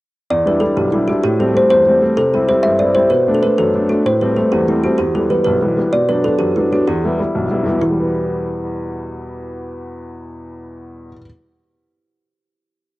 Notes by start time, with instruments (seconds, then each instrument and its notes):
0.30 upright piano E2, kalimba D5
0.45 upright piano G3 D4 E4, kalimba B4
0.60 upright piano G3 D4 E4, kalimba A4
0.76 upright piano B1, kalimba G4
0.92 upright piano G3 D4 E4, kalimba E4
1.08 upright piano G3 D4 E4, kalimba F#4
1.24 upright piano A2, kalimba G4
1.39 upright piano G3 A3 C4, kalimba A4
1.54 upright piano G3 A3 C4, kalimba C5
1.70 upright piano E2, kalimba C5
1.87 upright piano G3 A3 C4
2.02 upright piano G3 A3 C4
2.17 upright piano C3, kalimba A4
2.34 upright piano G3 C4 E4, kalimba G4
2.49 upright piano G3 C4 E4, kalimba C5
2.63 upright piano G2, kalimba E5
2.79 upright piano G3 C4 E4, kalimba D5
2.95 upright piano G3 C4 E4, kalimba C5
3.10 upright piano B2, kalimba B4
3.28 upright piano A3 B3 D4
3.35 kalimba A4
3.43 upright piano A3 B3 D4, kalimba B4
3.58 upright piano F#2, kalimba A4
3.74 upright piano A3 B3 D4
3.89 upright piano A3 B3 D4, kalimba F#4
4.05 upright piano A2, kalimba C5
4.21 upright piano G3 A3 C4, kalimba B4
4.37 upright piano G3 A3 C4, kalimba A4
4.52 upright piano E2, kalimba G4
4.68 upright piano G3 A3 C4, kalimba E4
4.84 upright piano G3 A3 C4, kalimba F#4
4.98 upright piano E2, kalimba G4
5.15 upright piano E3 G3 B3, kalimba A4
5.30 upright piano E3 G3 B3, kalimba B4
5.44 upright piano B1, kalimba B4
5.62 upright piano E3 G3 B3
5.77 upright piano E3 G3 B3
5.93 upright piano B2, kalimba D5
6.09 upright piano F#3 B3 D4, kalimba B4
6.24 upright piano F#3 B3 D4, kalimba A4
6.39 upright piano F#2, kalimba G4
6.56 upright piano F#3 B3 D4, kalimba E4
6.72 upright piano F#3 B3 D4, kalimba F#4
6.87 upright piano E2, kalimba G4
7.04 upright piano G3 B3 E4
7.19 upright piano G3 B3 E4
7.35 upright piano B1
7.51 upright piano G3 B3 E4
7.63 upright piano E2 G3 B3 E4
7.72 upright piano B2
7.81 upright piano E3, kalimba E4
7.91 upright piano G3
8.00 upright piano B3